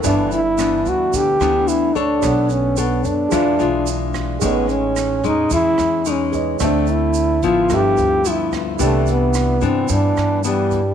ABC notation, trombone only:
X:1
M:4/4
L:1/8
Q:1/4=110
K:G
V:1 name="Trombone"
D E2 F G2 E D- | D ^C B, D4 z | B, ^C2 ^D E2 C z | D E2 =F G2 E z |
A, B,2 C D2 G,2 |]